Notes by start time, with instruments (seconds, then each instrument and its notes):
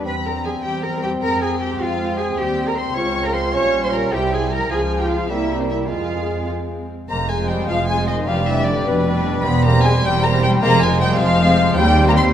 Already playing: french horn section G3
0.05 double bass section E2, bassoon C4, french horn section C4, cello section B4, violin section B5
0.24 viola section G3 C4, cello section A#4, violin section A#5
0.43 cello section G#4, violin section G#5
0.62 double bass section E2, cello section G4, violin section G5
0.83 viola section G3 C4, cello section A#4, violin section A#5
1.02 cello section G4, violin section G5
1.22 double bass section F2, viola section G#3 C4, french horn section G#3, cello section A#4, violin section A#5
1.41 viola section G#3 C4, cello section G#4, violin section G#5
1.59 cello section G4, violin section G5
1.78 double bass section F2, cello section F4, violin section F5
1.99 viola section G#3 C4
2.17 cello section G#4, violin section G#5
2.37 double bass section D#2, french horn section G3 C4, viola section G3 C4, cello section G4, violin section G5
2.67 cello section A#4, violin section A#5
2.76 cello section C5, violin section C6
2.96 double bass section C#2, viola section G#3 F4, french horn section G#3 F4, cello section C#5, violin section C#6
3.24 cello section A#4, violin section A#5
3.34 cello section C5, violin section C6
3.54 double bass section A#1, french horn section G3, viola section G3 F4, bassoon C#4, cello section C#5, violin section C#6
3.83 cello section C5, violin section C6
3.93 cello section A#4, violin section A#5
4.12 double bass section C2, viola section G3 E4, bassoon C4, french horn section E4, cello section G4, violin section G5
4.32 cello section G#4, violin section G#5
4.51 cello section A#4, violin section A#5
4.70 double bass section C#2, bassoon F3, french horn section F3 G#4, viola section F3 F4, cello section G#4, violin section G#5
4.99 cello section G4, violin section G5
5.09 cello section F4, violin section F5
5.29 double bass section C2, bassoon G3, french horn section G3 A#4, viola section A#3 C4, cello section E4, violin section E5
5.59 cello section C4, violin section C5
5.69 cello section E4, violin section E5
5.88 double bass section F2, french horn section F3 G#4, bassoon G#3, viola section G#3 C4, cello section F4, violin section F5
7.09 double bass section F1, cello section F2, bassoon G#3, french horn section A#3, cor anglais C5, violin section A#5, flute A#5
7.29 viola section G#3 C4, french horn section G#3, violin section F4 C5 G#5, flute G#5
7.49 french horn section G3, violin section G5, flute G5
7.68 double bass section F1, cello section F2, french horn section F3, flute F5, violin section F5
7.88 viola section G#3 C4, french horn section G#3, violin section F4 C5 G#5, flute G#5
8.07 french horn section D#3, flute D#5, violin section D#5
8.27 double bass section F1, cello section F2, french horn section F3, bassoon G3, viola section G3 D4, violin section G4 B4 F5, cor anglais D5, flute F5
8.46 french horn section E3, viola section G3 D4, violin section G4 B4 E5, flute E5
8.66 french horn section D3, violin section D5, flute D5
8.85 double bass section F1, cello section F2, french horn section B2, violin section B4, flute B4
9.06 viola section G3 D4, violin section G4 B4
9.45 double bass section E1, cello section E2, french horn section B3, cor anglais C5, violin section B5, flute B5
9.65 viola section G3 C4, french horn section A#3, violin section G4 C5 A#5, flute A#5
9.83 french horn section G#3, flute G#5, violin section G#5
10.03 double bass section E1, cello section E2, french horn section G3, flute G5, violin section G5
10.22 viola section G3 C4, french horn section A#3, violin section G4 C5 A#5, flute A#5
10.43 french horn section G3, flute G5, violin section G5
10.62 double bass section F1, cello section F2, bassoon G#3, viola section G#3 C4, french horn section A#3, violin section F4 C5 A#5, flute A#5
10.82 viola section G#3 C4, french horn section G#3, violin section F4 C5 G#5, flute G#5
11.00 french horn section G3, violin section G5, flute G5
11.19 double bass section F1, cello section F2, french horn section F3, violin section F5, flute F5
11.40 viola section G#3 C4, violin section F4 C5
11.77 double bass section D#2, cello section D#2, bassoon G3, french horn section G3, cor anglais C5, violin section G5, flute G5
11.98 viola section G3 C4, violin section G4 C5
12.08 french horn section A#3, flute A#5, violin section A#5
12.17 french horn section C4, violin section C6, flute C6